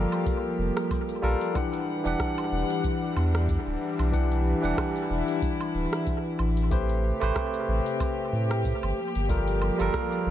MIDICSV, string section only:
0, 0, Header, 1, 2, 480
1, 0, Start_track
1, 0, Key_signature, 1, "minor"
1, 0, Tempo, 645161
1, 1157, Time_signature, 4, 2, 24, 8
1, 7667, End_track
2, 0, Start_track
2, 0, Title_t, "String section"
2, 0, Program_c, 0, 48
2, 0, Note_on_c, 0, 53, 84
2, 0, Note_on_c, 0, 58, 78
2, 0, Note_on_c, 0, 67, 88
2, 1127, Note_off_c, 0, 67, 0
2, 1135, Note_off_c, 0, 58, 0
2, 1136, Note_off_c, 0, 53, 0
2, 1160, Note_on_c, 0, 52, 84
2, 1161, Note_on_c, 0, 55, 78
2, 1161, Note_on_c, 0, 62, 73
2, 1161, Note_on_c, 0, 78, 92
2, 3060, Note_off_c, 0, 78, 0
2, 3080, Note_on_c, 0, 64, 95
2, 4969, Note_off_c, 0, 52, 0
2, 4969, Note_off_c, 0, 55, 0
2, 4969, Note_off_c, 0, 62, 0
2, 4979, Note_off_c, 0, 64, 0
2, 4995, Note_on_c, 0, 48, 83
2, 4996, Note_on_c, 0, 67, 96
2, 6659, Note_off_c, 0, 48, 0
2, 6674, Note_on_c, 0, 53, 88
2, 6676, Note_on_c, 0, 58, 80
2, 7667, Note_off_c, 0, 53, 0
2, 7667, Note_off_c, 0, 58, 0
2, 7667, Note_off_c, 0, 67, 0
2, 7667, End_track
0, 0, End_of_file